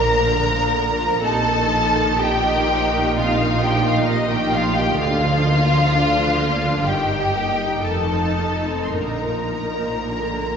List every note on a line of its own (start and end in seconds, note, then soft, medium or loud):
0.00 1.19 A#1 medium
0.00 1.19 A#2 soft
0.00 0.25 F3 soft
0.00 1.19 D4 medium
0.00 1.19 A#4 medium
0.00 1.23 A#5 medium
0.25 0.49 D3 soft
0.49 0.74 F3 soft
0.73 0.98 D3 soft
0.98 1.22 F3 soft
1.22 4.95 A#1 medium
1.22 4.95 A#2 medium
1.22 1.45 C3 medium
1.22 5.93 D#4 medium
1.22 2.18 A4 medium
1.22 2.18 A5 medium
1.46 1.71 D#3 soft
1.71 1.95 F3 soft
1.95 2.20 D#3 soft
2.19 2.44 C3 soft
2.19 3.15 G4 medium
2.19 3.16 G5 medium
2.44 2.68 D#3 soft
2.68 2.92 F3 soft
2.92 3.15 D#3 soft
3.15 3.37 C3 medium
3.15 3.61 F4 medium
3.15 3.61 F5 medium
3.39 3.62 D#3 medium
3.62 3.85 F3 soft
3.62 3.85 G4 medium
3.62 3.85 G5 medium
3.84 4.07 D#3 soft
3.84 4.07 F4 medium
3.84 4.08 F5 medium
4.07 4.31 C3 medium
4.07 4.29 D#4 medium
4.07 4.31 D#5 medium
4.30 4.53 D#3 soft
4.30 4.53 G4 medium
4.30 4.53 G5 medium
4.53 4.76 F3 soft
4.53 4.76 F4 medium
4.53 4.76 F5 medium
4.75 4.99 D#3 soft
4.75 4.99 G4 medium
4.75 4.99 G5 medium
4.99 6.83 D2 medium
4.99 5.21 D3 medium
4.99 6.83 D3 medium
4.99 6.86 F4 medium
4.99 6.82 F5 medium
5.23 5.46 F3 soft
5.47 5.70 A#3 soft
5.71 5.94 F3 soft
5.95 6.17 D3 soft
5.95 6.87 D4 soft
6.17 6.40 F3 soft
6.41 6.63 A#3 soft
6.63 6.86 F3 soft
6.85 7.85 G1 soft
6.85 7.85 G2 soft
6.85 7.09 D#3 soft
6.85 10.08 D#4 soft
6.85 7.86 G4 medium
6.85 7.85 G5 medium
7.10 7.35 G3 soft
7.35 7.60 A#3 soft
7.60 7.85 G3 soft
7.85 8.91 F1 soft
7.85 8.92 F2 soft
7.85 8.10 D#3 soft
7.85 8.91 A4 soft
7.85 8.86 A5 medium
8.12 8.38 F3 soft
8.39 8.66 A3 soft
8.65 8.94 C4 soft
8.84 8.93 C6 soft
8.92 10.57 A#1 soft
8.92 10.57 A#2 soft
8.92 9.20 D3 soft
8.92 10.57 A#4 soft
8.92 10.57 A#5 soft
9.23 9.51 F3 soft
9.51 9.80 A#3 soft
9.80 10.08 F3 soft
10.09 10.57 D3 soft